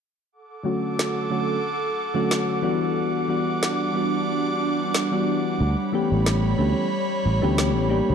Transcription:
0.32 A4 F#5 D6
0.63 D3 F#3 A3 C#4 F#4
0.99 snare
1.30 D3 F#3 A3 C#4 F#4
2.14 D3 F#3 A3 C#4 F#4
2.31 snare
2.62 E3 G3 B3 D4 F#4
2.96 G3 D4 D6
3.28 E3 G3 B3 D4 F#4
3.63 snare
3.93 E3 G3 B3 D4 F#4
4.95 snare
5.11 E3 G3 B3 D4 F#4
5.60 D2 C#5 B5
5.92 E3 A3 B3 C#4 G4
6.11 A1
6.26 snare
6.58 D2 E3 A3 B3 C#4 G4
7.25 A1
7.42 D2 E3 A3 B3 C#4 G4
7.58 snare
7.76 A1
7.89 A#3 D4 G4
8.10 D2

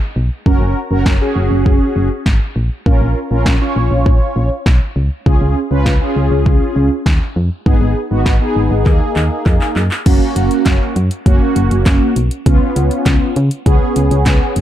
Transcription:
0.16 B1
0.46 F#1 C#4 F#4 A#4, kick
0.61 F#1
0.91 F#1 C#4 F#4 A#4
1.06 F#1, kick, snare
1.21 C#4 F#4 G#4
1.36 F#1
1.51 F#1
1.66 F#1, kick
1.96 F#1
2.26 G#1, kick, snare
2.56 A#1
2.86 A#1 C#4 F4 A#4, kick
3.01 A#1
3.31 A#1 C#4 F4 A#4
3.46 A#1, kick, snare
3.61 C#4 F4 C#5
3.76 A#1
3.91 A#1
4.06 A#1, kick
4.36 A#1
4.66 B1, kick, snare
4.96 C#2
5.26 C#2 C#4 F4 G#4, kick
5.41 C#2
5.71 C#2 C#4 F4 B4
5.86 C#2, kick, snare
6.01 C#4 F4 G#4
6.16 C#2
6.31 C#2
6.46 C#2, kick
6.76 C#2
7.06 D#2, kick, snare
7.36 F2
7.66 G#1 B3 D#4 G#4, kick
7.81 G#1
8.11 G#1 B3 D#4 F#4
8.26 G#1, kick, snare
8.41 B3 D#4 G#4
8.56 G#1
8.71 G#1
8.86 D#2 A#3 D#4 G#4, kick, clap
9.16 D#2, clap
9.46 F2, kick, clap
9.61 clap
9.76 F#2, clap
9.91 clap
10.06 F#1 A#3 C#4 F#4, kick, closed hi-hat, crash
10.36 F#1, closed hi-hat
10.51 closed hi-hat
10.66 F#1, kick, snare, clap, closed hi-hat
10.96 F#2, closed hi-hat
11.11 closed hi-hat
11.26 F#1 A#3 C#4 F#4, kick, closed hi-hat
11.56 F#1, closed hi-hat
11.71 F#1, closed hi-hat
11.86 F#1, kick, snare, clap, closed hi-hat
12.16 B1, closed hi-hat
12.31 closed hi-hat
12.46 C#2 B3 C#4 F4, kick, closed hi-hat
12.76 C#2, closed hi-hat
12.91 closed hi-hat
13.06 C#2, kick, snare, clap, closed hi-hat
13.36 C#3, closed hi-hat
13.51 closed hi-hat
13.66 C#2 B3 C#4 G#4, kick, closed hi-hat
13.96 C#2, closed hi-hat
14.11 C#2, closed hi-hat
14.26 C#2, kick, snare, clap, closed hi-hat
14.56 F#1, closed hi-hat

